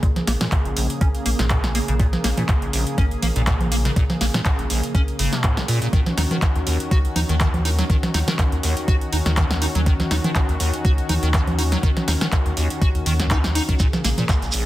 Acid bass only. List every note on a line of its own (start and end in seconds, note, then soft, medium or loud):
0.03 0.10 A#2 medium
0.27 0.32 A#3 medium
0.41 0.47 A#2 medium
0.52 0.56 A#2 medium
0.77 0.88 A#1 medium
1.01 1.09 C#4 medium
1.26 1.30 A#3 medium
1.39 1.45 A#2 medium
1.50 1.58 A#2 loud
1.75 1.79 A#3 medium
1.88 1.94 C#3 medium
1.99 2.07 A#2 medium
2.24 2.29 A#3 medium
2.38 2.44 A#2 medium
2.49 2.53 A#2 medium
2.73 2.84 A#1 medium
2.98 3.05 C#4 medium
3.23 3.27 A#3 medium
3.36 3.42 A#2 medium
3.47 3.54 A#2 loud
3.72 3.76 A#3 medium
3.85 3.91 C#3 medium
3.96 4.04 A#2 medium
4.21 4.25 A#3 medium
4.34 4.40 A#2 medium
4.45 4.50 A#2 medium
4.70 4.81 A#1 medium
4.95 5.02 C#4 medium
5.19 5.34 C#3 medium
5.33 5.45 B2 medium
5.44 5.59 G#2 loud
5.57 5.63 A#3 medium
5.68 5.79 A#2 loud
5.82 5.88 A#2 medium
5.93 6.00 D#3 medium
6.17 6.22 D#4 medium
6.31 6.37 D#3 medium
6.42 6.47 D#3 medium
6.67 6.78 D#2 medium
6.91 6.99 F#4 medium
7.16 7.20 D#4 medium
7.29 7.35 D#3 medium
7.40 7.48 D#3 loud
7.65 7.69 D#4 medium
7.79 7.85 F#3 medium
7.90 7.97 D#3 medium
8.14 8.19 D#4 medium
8.28 8.34 D#3 medium
8.39 8.43 D#3 medium
8.63 8.75 D#2 medium
8.88 8.95 F#4 medium
9.13 9.17 D#4 medium
9.26 9.32 D#3 medium
9.37 9.45 D#3 loud
9.62 9.66 D#4 medium
9.75 9.81 F#3 medium
9.86 9.94 D#3 medium
10.11 10.15 D#4 medium
10.24 10.31 D#3 medium
10.36 10.40 D#3 medium
10.60 10.71 D#2 medium
10.85 10.92 F#4 medium
11.09 11.14 D#4 medium
11.23 11.29 D#3 medium
11.34 11.41 D#3 loud
11.59 11.63 D#4 medium
11.72 11.78 F#3 medium
11.83 11.91 D#3 medium
12.08 12.12 D#4 medium
12.21 12.27 D#3 medium
12.32 12.37 D#3 medium
12.57 12.68 D#2 medium
12.81 12.89 F#4 medium
13.06 13.13 D#3 medium
13.20 13.26 D#2 medium
13.31 13.38 D#4 loud
13.55 13.63 D#4 loud
13.69 13.75 D#3 medium
13.80 13.87 A#2 medium
14.04 14.09 A#3 medium
14.18 14.24 A#2 medium
14.29 14.33 A#2 medium
14.54 14.65 A#1 medium